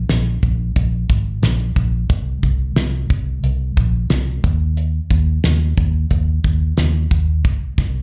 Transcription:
0.09 0.37 A#1 medium
0.09 snare medium
0.09 closed hi-hat medium
0.43 0.70 A#1 medium
0.43 kick medium
0.43 closed hi-hat soft
0.76 1.04 A#1 medium
0.76 kick medium
0.76 closed hi-hat medium
1.09 1.37 G#1 medium
1.09 kick medium
1.09 closed hi-hat medium
1.42 1.70 A#1 medium
1.42 snare medium
1.42 closed hi-hat medium
1.60 closed hi-hat soft
1.76 2.04 A#1 medium
1.76 kick medium
1.76 closed hi-hat medium
2.10 2.37 C2 medium
2.10 kick loud
2.10 closed hi-hat medium
2.43 2.71 C2 medium
2.43 kick medium
2.43 closed hi-hat medium
2.76 3.04 C2 medium
2.76 snare loud
2.76 closed hi-hat medium
3.10 3.38 C2 medium
3.10 kick medium
3.10 closed hi-hat soft
3.43 3.71 C2 medium
3.43 closed hi-hat medium
3.77 4.04 A#1 medium
3.77 kick medium
3.77 closed hi-hat medium
4.10 4.38 C2 medium
4.10 snare medium
4.10 closed hi-hat medium
4.44 4.99 D#2 medium
4.44 kick medium
4.44 closed hi-hat medium
4.77 closed hi-hat medium
5.10 5.38 D#2 medium
5.10 kick medium
5.10 closed hi-hat medium
5.44 5.72 D#2 medium
5.44 snare medium
5.44 closed hi-hat medium
5.77 6.05 D#2 medium
5.77 kick medium
5.77 closed hi-hat medium
6.11 6.39 D#2 medium
6.11 kick medium
6.11 closed hi-hat medium
6.44 6.72 D#2 medium
6.44 kick medium
6.44 closed hi-hat medium
6.77 7.06 D#2 medium
6.77 snare medium
6.77 closed hi-hat medium
7.11 7.45 D#2 medium
7.11 kick medium
7.11 closed hi-hat medium
7.44 7.73 C2 medium
7.44 kick loud
7.44 closed hi-hat medium
7.78 8.02 C2 medium
7.78 kick medium
7.78 snare soft
7.78 closed hi-hat medium

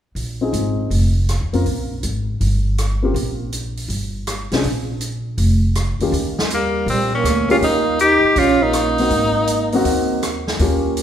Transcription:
0.15 0.50 A#1 medium
0.15 open hi-hat soft
0.41 0.88 C4 soft
0.41 0.89 D#4 soft
0.41 0.89 F4 soft
0.41 0.89 G#4 medium
0.53 0.88 G#1 medium
0.53 closed hi-hat soft
0.90 1.37 F1 medium
0.90 open hi-hat soft
1.29 cross-stick soft
1.29 closed hi-hat soft
1.41 1.53 D#2 soft
1.53 1.65 F2 medium
1.53 1.64 A#3 medium
1.53 1.65 C4 medium
1.53 1.65 F4 medium
1.53 1.65 A#4 medium
1.53 open hi-hat soft
1.66 2.01 A#1 medium
1.66 open hi-hat soft
2.03 2.38 G#1 medium
2.03 closed hi-hat soft
2.41 3.11 G1 medium
2.41 open hi-hat soft
2.78 cross-stick soft
2.78 closed hi-hat soft
3.03 3.14 A#3 medium
3.03 3.14 C4 soft
3.03 3.14 F4 soft
3.03 3.15 G4 medium
3.14 3.85 A#1 medium
3.14 open hi-hat soft
3.53 closed hi-hat soft
3.77 open hi-hat soft
3.88 4.47 G1 medium
3.88 open hi-hat soft
4.27 cross-stick medium
4.27 closed hi-hat soft
4.52 4.63 B1 medium
4.52 4.64 C4 medium
4.52 4.64 D4 soft
4.52 4.64 F4 soft
4.52 4.64 G#4 medium
4.52 snare soft
4.52 open hi-hat soft
4.64 5.35 A#1 medium
4.64 open hi-hat soft
5.01 closed hi-hat soft
5.38 5.96 F1 medium
5.38 open hi-hat soft
5.75 cross-stick medium
5.75 closed hi-hat soft
6.00 6.12 D#3 soft
6.00 6.12 A#3 medium
6.00 6.12 C#4 soft
6.00 6.13 F4 medium
6.00 6.13 G4 medium
6.00 muted upright bass stroke soft
6.00 open hi-hat soft
6.12 6.83 D#2 medium
6.12 open hi-hat soft
6.39 snare medium
6.50 6.86 G3 medium
6.50 6.87 A#3 medium
6.50 closed hi-hat soft
6.86 7.22 A#1 medium
6.86 7.12 C4 medium
6.86 open hi-hat soft
6.91 7.12 G3 medium
7.15 7.48 A#3 medium
7.15 7.48 C#4 medium
7.24 7.59 D2 medium
7.24 cross-stick medium
7.24 closed hi-hat soft
7.49 7.61 A#3 medium
7.49 7.61 C#4 medium
7.49 7.56 C#4 medium
7.49 7.61 F4 medium
7.49 7.56 F4 medium
7.49 7.62 G4 medium
7.49 open hi-hat soft
7.61 8.19 D#2 medium
7.61 7.98 A#3 medium
7.61 7.98 D#4 medium
7.61 open hi-hat soft
7.99 8.40 D#4 medium
7.99 8.40 G4 loud
7.99 closed hi-hat soft
8.24 muted upright bass stroke soft
8.36 9.07 A#1 medium
8.36 8.64 C#4 medium
8.36 8.64 F4 medium
8.36 open hi-hat soft
8.63 10.11 A#3 medium
8.63 10.11 D#4 loud
8.73 cross-stick medium
8.73 closed hi-hat soft
8.98 9.10 A#3 soft
8.98 9.10 C4 medium
8.98 9.11 D#4 soft
8.98 9.11 F#4 medium
8.98 open hi-hat soft
9.10 9.81 G#1 medium
9.10 open hi-hat soft
9.47 closed hi-hat soft
9.72 10.20 A#3 medium
9.72 10.21 C4 medium
9.72 10.21 D#4 medium
9.72 10.21 F#4 medium
9.72 open hi-hat soft
9.85 10.56 D#2 medium
9.85 open hi-hat soft
10.23 cross-stick medium
10.23 closed hi-hat soft
10.47 snare soft
10.59 11.03 D#2 medium
10.59 11.03 A#3 medium
10.59 11.03 C#4 medium
10.59 11.03 F4 medium
10.59 11.03 G4 medium
10.59 open hi-hat soft
10.97 closed hi-hat soft

